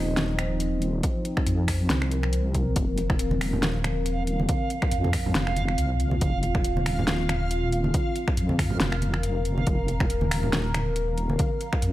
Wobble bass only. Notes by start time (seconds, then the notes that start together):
Already playing: D#1
1.47 F2
1.90 C2
2.76 F1
3.19 D#1
4.92 F2
5.35 F1
5.79 C2
6.22 F1
6.65 D#1
8.37 F2
8.81 F1
9.67 F1
10.10 D#1
11.83 F2